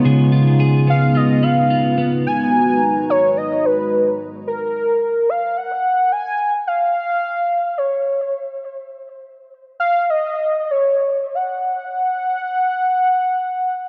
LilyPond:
<<
  \new Staff \with { instrumentName = "Soft synth lead" } { \time 4/4 \key gis \dorian \tempo 4 = 109 r4. eis''8 dis''8 eis''4 r8 | gis''4. cis''8 dis''8 b'4 r8 | ais'4. eis''8 fis''4 gis''8. r16 | eis''2 cis''4 r4 |
r4. eis''8 dis''4 cis''8. r16 | fis''1 | }
  \new Staff \with { instrumentName = "Clean electric guitar" } { \time 4/4 \key gis \dorian <cis b eis' gis'>8 eis'8 gis'8 b8 eis'8 b8 eis'8 b8 | r1 | r1 | r1 |
r1 | r1 | }
  \new Staff \with { instrumentName = "Analog synth pad" } { \time 4/4 \key gis \dorian << { <b dis' eis'>1 | <dis' fis' b' ais''>1 | r1 | r1 |
r1 | r1 | } \\ { <cis gis>1~ | <cis gis>1 | r1 | r1 |
r1 | r1 | } >> }
>>